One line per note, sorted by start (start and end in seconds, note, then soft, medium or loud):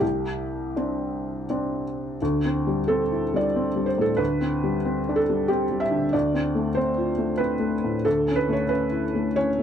0.00 0.73 C2 soft
0.00 1.83 G4 medium
0.76 1.45 C4 soft
0.76 1.45 D4 soft
1.50 2.16 C4 soft
1.50 2.16 D4 soft
2.22 4.17 D2 medium
2.45 2.80 C4 soft
2.67 3.02 G3 soft
2.88 3.24 C4 soft
2.88 3.37 A4 medium
3.12 3.46 E4 soft
3.34 3.68 G3 soft
3.34 3.86 D5 medium
3.56 3.90 C4 soft
3.76 4.11 G3 soft
3.86 4.03 C5 medium
3.98 4.20 A2 soft
3.98 4.18 A4 medium
4.17 6.09 D2 medium
4.17 5.17 B4 medium
4.41 4.76 C4 soft
4.64 4.99 G3 soft
4.85 5.20 C4 soft
5.09 5.43 D4 soft
5.16 5.49 A4 medium
5.29 5.63 G3 soft
5.48 5.84 C4 soft
5.48 5.81 G4 medium
5.70 6.05 G3 soft
5.80 6.13 E5 medium
5.91 6.13 D3 soft
6.13 8.02 D2 medium
6.13 6.77 D5 medium
6.34 6.68 C4 soft
6.55 6.90 A3 soft
6.75 7.11 C4 soft
6.75 7.40 C5 medium
6.98 7.32 F4 soft
7.18 7.53 A3 soft
7.38 7.74 C4 soft
7.38 8.03 B4 medium
7.60 7.95 A3 soft
7.84 8.05 A2 soft
8.05 9.63 D2 soft
8.05 8.37 A4 medium
8.28 8.62 C#4 soft
8.36 8.53 B4 medium
8.49 8.84 A3 soft
8.53 8.70 C#5 medium
8.69 9.05 C#4 soft
8.69 9.35 B4 medium
8.92 9.27 E4 soft
9.15 9.49 A3 soft
9.36 9.63 C#4 soft
9.36 9.63 C#5 medium
9.59 9.63 A3 soft